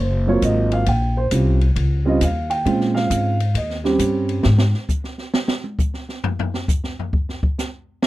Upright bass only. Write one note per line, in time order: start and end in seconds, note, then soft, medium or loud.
0.00 0.40 F#1 medium
0.42 0.85 G#1 medium
0.86 1.30 A#1 medium
1.31 1.75 C2 loud
1.76 2.19 C#2 medium
2.21 2.64 D#2 medium
2.65 3.09 A#2 medium
3.10 3.54 G#2 medium
3.54 3.98 D#2 medium
3.99 4.43 G2 medium
4.45 4.73 G#2 medium